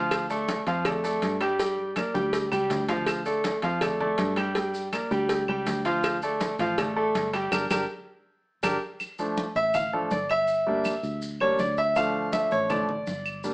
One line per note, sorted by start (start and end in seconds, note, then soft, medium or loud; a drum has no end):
0.00 0.61 D2 medium
0.00 0.24 F3 medium
0.00 0.24 F4 medium
0.00 0.24 F5 medium
0.11 cowbell loud
0.11 high conga soft
0.11 claves medium
0.11 maracas medium
0.30 0.60 A3 medium
0.30 0.60 A4 medium
0.30 0.61 D5 medium
0.30 high conga soft
0.30 maracas medium
0.48 cowbell medium
0.48 high conga medium
0.48 maracas medium
0.67 1.19 F2 medium
0.67 0.82 F3 medium
0.67 0.82 F4 medium
0.67 0.83 F5 medium
0.67 cowbell medium
0.67 high conga soft
0.67 maracas soft
0.85 1.01 A3 medium
0.85 1.01 A4 medium
0.85 1.01 D5 medium
0.85 cowbell loud
0.85 high conga soft
0.85 low conga medium
0.85 claves medium
0.85 maracas medium
1.04 1.34 A3 medium
1.04 1.35 A4 medium
1.04 1.35 D5 medium
1.04 high conga soft
1.04 maracas medium
1.22 2.09 G2 medium
1.22 cowbell medium
1.22 high conga medium
1.22 maracas medium
1.41 1.56 G3 medium
1.41 1.56 G4 medium
1.41 1.57 G5 medium
1.41 cowbell medium
1.41 claves medium
1.41 maracas soft
1.59 1.90 G3 medium
1.59 1.90 G4 medium
1.59 1.90 G5 medium
1.59 cowbell medium
1.59 high conga soft
1.59 maracas medium
1.78 high conga soft
1.96 2.12 A#3 medium
1.96 2.12 A#4 medium
1.96 2.12 D5 medium
1.96 cowbell medium
1.96 high conga medium
1.96 claves medium
1.96 maracas medium
2.14 2.49 D2 medium
2.14 2.45 G3 medium
2.14 2.45 G4 medium
2.14 2.45 G5 medium
2.14 high conga loud
2.14 maracas soft
2.33 cowbell loud
2.33 maracas medium
2.52 2.69 C#2 medium
2.52 2.82 G3 medium
2.52 2.82 G4 medium
2.52 2.83 G5 medium
2.52 claves medium
2.52 maracas medium
2.70 3.57 D2 medium
2.70 cowbell medium
2.70 low conga medium
2.70 maracas medium
2.89 3.19 F3 medium
2.89 3.19 F4 medium
2.89 3.19 F5 medium
2.89 cowbell medium
2.89 low conga medium
2.89 maracas soft
3.06 cowbell loud
3.06 high conga soft
3.06 claves medium
3.06 maracas medium
3.26 3.56 A3 medium
3.26 3.56 A4 medium
3.26 3.57 D5 medium
3.26 high conga soft
3.26 maracas medium
3.44 cowbell medium
3.44 high conga loud
3.44 maracas medium
3.62 4.15 F2 medium
3.62 3.78 F3 medium
3.62 3.78 F4 medium
3.62 3.79 F5 medium
3.62 cowbell medium
3.62 high conga soft
3.62 maracas soft
3.81 3.97 A3 medium
3.81 3.97 A4 medium
3.81 3.97 D5 medium
3.81 cowbell loud
3.81 high conga soft
3.81 low conga medium
3.81 claves medium
3.81 maracas medium
4.00 4.31 A3 medium
4.00 4.31 A4 medium
4.00 4.31 D5 medium
4.00 high conga soft
4.00 low conga medium
4.18 5.05 G2 medium
4.18 cowbell medium
4.18 high conga medium
4.18 maracas medium
4.36 4.52 G3 medium
4.36 4.53 G4 medium
4.36 4.53 G5 medium
4.36 cowbell medium
4.36 claves medium
4.36 maracas soft
4.55 4.86 G3 medium
4.55 4.87 G4 medium
4.55 4.87 G5 medium
4.55 cowbell loud
4.55 high conga soft
4.55 maracas medium
4.74 high conga soft
4.74 maracas medium
4.93 5.08 A#3 medium
4.93 5.08 A#4 medium
4.93 5.08 D5 medium
4.93 cowbell medium
4.93 high conga medium
4.93 claves medium
4.93 maracas medium
5.11 5.46 D2 medium
5.11 5.42 G3 medium
5.11 5.42 G4 medium
5.11 5.42 G5 medium
5.11 high conga soft
5.11 maracas soft
5.29 cowbell loud
5.29 high conga soft
5.29 maracas medium
5.48 5.65 C#2 medium
5.48 5.79 G3 medium
5.48 5.79 G4 medium
5.48 5.79 G5 medium
5.48 high conga soft
5.48 claves medium
5.66 6.53 D2 medium
5.66 cowbell medium
5.66 high conga medium
5.66 maracas medium
5.85 6.16 F3 medium
5.85 6.16 F4 loud
5.85 6.16 F5 medium
5.85 cowbell medium
5.85 maracas soft
6.03 cowbell loud
6.03 high conga soft
6.03 claves medium
6.03 maracas medium
6.22 6.53 A3 medium
6.22 6.53 A4 medium
6.22 6.54 D5 medium
6.22 high conga soft
6.22 maracas medium
6.41 cowbell medium
6.41 high conga medium
6.41 maracas medium
6.59 7.11 A1 medium
6.59 6.75 F3 medium
6.59 6.75 F4 medium
6.59 6.75 F5 medium
6.59 cowbell medium
6.59 high conga soft
6.59 maracas soft
6.78 6.94 A3 medium
6.78 6.94 A4 medium
6.78 6.94 D5 medium
6.78 cowbell loud
6.78 high conga soft
6.78 low conga medium
6.78 claves medium
6.78 maracas medium
6.96 7.27 A3 medium
6.96 7.27 A4 medium
6.96 7.27 D5 medium
6.96 high conga soft
7.15 7.49 G1 medium
7.15 cowbell medium
7.15 high conga medium
7.15 maracas medium
7.33 7.49 G3 medium
7.33 7.49 G4 medium
7.33 7.49 G5 medium
7.33 cowbell medium
7.33 claves medium
7.33 maracas soft
7.52 7.66 G1 loud
7.52 7.64 D4 medium
7.52 7.64 G4 medium
7.52 7.64 A#4 medium
7.52 cowbell medium
7.52 high conga loud
7.52 claves loud
7.52 maracas medium
7.71 7.84 G1 medium
7.71 7.83 D4 medium
7.71 7.83 G4 medium
7.71 7.82 A#4 loud
7.71 cowbell loud
7.71 high conga loud
7.71 claves loud
7.71 maracas loud
8.63 8.77 G1 medium
8.63 8.75 D4 medium
8.63 8.75 G4 loud
8.63 8.75 A#4 loud
8.63 cowbell loud
8.63 high conga loud
8.63 claves loud
8.63 maracas loud
9.00 high conga soft
9.00 claves medium
9.00 maracas medium
9.19 9.43 F3 medium
9.19 9.44 A3 soft
9.19 9.44 D4 medium
9.19 high conga soft
9.19 maracas medium
9.37 high conga medium
9.37 maracas medium
9.55 10.07 A1 medium
9.55 9.74 E5 loud
9.55 high conga soft
9.55 maracas soft
9.74 9.92 F5 medium
9.74 high conga soft
9.74 low conga medium
9.74 claves medium
9.74 maracas medium
9.93 10.10 F3 soft
9.93 10.10 A3 soft
9.93 10.10 D4 medium
9.93 10.11 A4 medium
9.93 high conga soft
10.11 10.98 G1 medium
10.11 10.29 D5 medium
10.11 high conga medium
10.11 maracas medium
10.29 11.19 E5 loud
10.29 claves medium
10.29 maracas soft
10.48 high conga soft
10.48 maracas medium
10.67 10.91 G3 medium
10.67 10.92 A#3 medium
10.67 10.92 D4 medium
10.67 high conga soft
10.84 high conga medium
10.84 claves medium
10.84 maracas medium
11.03 11.55 D2 medium
11.03 high conga soft
11.03 maracas soft
11.22 high conga soft
11.22 maracas medium
11.40 11.57 G3 medium
11.40 11.58 A#3 soft
11.40 11.58 D4 medium
11.40 11.59 C#5 medium
11.40 high conga soft
11.40 claves medium
11.59 12.46 D2 medium
11.59 11.77 D5 medium
11.59 high conga medium
11.59 maracas medium
11.77 11.96 E5 medium
11.77 maracas soft
11.96 12.68 F3 medium
11.96 12.68 A3 soft
11.96 12.69 D4 medium
11.96 12.31 F5 medium
11.96 high conga soft
11.96 claves medium
11.96 maracas medium
12.15 high conga soft
12.33 12.51 E5 medium
12.33 high conga medium
12.33 maracas medium
12.51 13.04 A1 medium
12.51 12.70 C#5 medium
12.51 high conga soft
12.51 maracas soft
12.70 12.87 F3 soft
12.70 12.87 A3 soft
12.70 12.87 D4 soft
12.70 13.40 D5 medium
12.70 high conga soft
12.70 low conga medium
12.70 claves medium
12.70 maracas medium
12.89 high conga soft
12.89 low conga medium
13.07 13.54 G1 loud
13.07 high conga medium
13.07 maracas medium
13.25 claves medium
13.25 maracas soft
13.44 13.54 G3 medium
13.44 13.54 A#3 soft
13.44 13.54 D4 medium
13.44 high conga soft
13.44 maracas medium